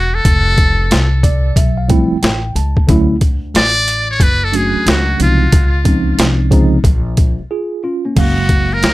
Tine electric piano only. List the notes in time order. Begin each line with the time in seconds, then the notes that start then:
1.24 D5
1.57 E5
1.77 F5
1.88 F3 G3 A3 C4 E4 G5
2.23 G5
2.56 A5
2.87 D3 F#3 A3 C#4 E4
4.52 F#3 A3 C#4 D4 F#4
5.19 C#3 F3 G#3 C4 D#4
5.85 F3 G#3 C4 C#4 D#4
6.50 C#3 F3 G#3 C4 D#4
7.51 F4 G#4
7.84 C#4 F4
8.05 A#3 C#4
8.16 C#3 F#3 G#3 A#3 F5